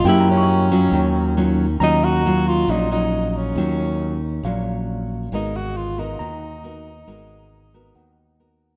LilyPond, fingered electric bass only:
\new Staff \with { instrumentName = "Fingered electric bass" } { \clef bass \time 4/4 \key ees \minor \tempo 4 = 137 ges,2 ees,2 | ees,2 bes,,2 | ees,2 bes,,2 | aes,,2 ees,2 |
aes,,2 ees,2 | }